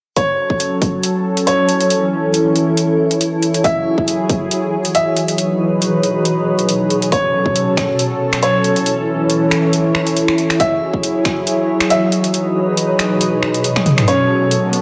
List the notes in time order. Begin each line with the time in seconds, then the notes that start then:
0.16 F#3 C#4 A4 C#5, kick, closed hi-hat
0.34 E4 A4 C#5
0.50 kick
0.60 closed hi-hat
0.82 kick, closed hi-hat
1.03 closed hi-hat
1.37 closed hi-hat
1.47 C#5, closed hi-hat
1.69 closed hi-hat
1.81 closed hi-hat
1.90 E3, closed hi-hat
2.34 closed hi-hat
2.56 closed hi-hat
2.77 closed hi-hat
3.11 closed hi-hat
3.21 closed hi-hat
3.43 closed hi-hat
3.54 closed hi-hat
3.64 E3 F#3 E4 G#4 E5, kick, closed hi-hat
3.91 D#6
3.98 kick
4.08 closed hi-hat
4.24 G#4
4.30 kick, closed hi-hat
4.51 closed hi-hat
4.85 closed hi-hat
4.95 E5, closed hi-hat
5.17 closed hi-hat
5.28 closed hi-hat
5.38 B2 D#4 B4, closed hi-hat
5.82 closed hi-hat
6.03 closed hi-hat
6.25 closed hi-hat
6.59 closed hi-hat
6.69 closed hi-hat
6.90 closed hi-hat
7.02 closed hi-hat
7.12 F#3 C#4 A4 C#5, kick, closed hi-hat
7.30 E4
7.42 A4, kick
7.56 closed hi-hat
7.77 finger snap, kick, closed hi-hat
7.99 closed hi-hat
8.33 finger snap, closed hi-hat
8.43 C#5, closed hi-hat
8.64 closed hi-hat
8.76 closed hi-hat
8.86 E3, closed hi-hat
9.30 closed hi-hat
9.51 finger snap, closed hi-hat
9.73 closed hi-hat
9.95 finger snap
10.07 closed hi-hat
10.17 closed hi-hat
10.28 finger snap
10.38 closed hi-hat
10.50 finger snap, closed hi-hat
10.60 E3 F#3 E4 G#4 E5, kick, closed hi-hat
10.72 D#6
10.94 kick
11.03 closed hi-hat
11.12 G#4
11.25 finger snap, kick, closed hi-hat
11.47 closed hi-hat
11.80 finger snap, closed hi-hat
11.90 E5, closed hi-hat
12.12 closed hi-hat
12.24 closed hi-hat
12.34 B2 D#4 B4, closed hi-hat
12.77 closed hi-hat
12.99 finger snap, closed hi-hat
13.21 closed hi-hat
13.43 finger snap
13.54 closed hi-hat
13.64 closed hi-hat
13.76 finger snap, high tom
13.86 closed hi-hat, mid tom
13.98 finger snap, closed hi-hat, mid tom
14.08 F#3 C#4 A4 C#5, closed hi-hat, riser
14.37 E4
14.51 A4, closed hi-hat
14.73 closed hi-hat